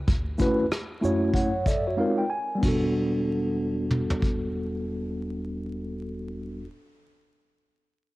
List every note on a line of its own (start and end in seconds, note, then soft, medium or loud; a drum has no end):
0.07 0.48 D2 loud
0.07 kick loud
0.07 closed hi-hat medium
0.38 0.63 A3 medium
0.38 0.64 C#4 medium
0.38 0.64 E4 medium
0.38 0.65 F#4 medium
0.38 0.65 B4 medium
0.38 kick medium
0.38 shaker soft
0.59 0.69 E2 medium
0.71 cross-stick medium
0.71 closed hi-hat medium
1.01 1.99 F#2 medium
1.01 1.50 A3 medium
1.01 1.51 C#4 medium
1.01 1.51 E4 medium
1.01 1.36 F#4 medium
1.01 1.34 C#5 medium
1.01 shaker soft
1.34 1.66 C#5 medium
1.34 1.65 F#5 medium
1.34 kick medium
1.34 closed hi-hat medium
1.66 1.86 A4 soft
1.66 1.86 D5 medium
1.66 1.97 E5 medium
1.66 kick medium
1.66 shaker medium
1.87 2.18 F#4 soft
1.87 2.17 C#5 medium
1.97 2.23 G#3 medium
1.97 2.23 C4 medium
1.97 2.23 D#4 medium
1.97 2.24 F4 medium
1.97 2.24 A#4 medium
1.97 2.17 F5 medium
2.18 2.30 G5 medium
2.30 2.60 G#5 medium
2.55 6.60 G3 medium
2.55 6.62 B3 medium
2.61 6.64 E1 medium
2.61 6.64 D4 medium
2.61 6.65 F#4 medium
2.61 kick medium
2.61 ride medium
2.68 6.67 A4 medium
3.91 mid tom medium
4.10 floor tom medium
4.22 kick medium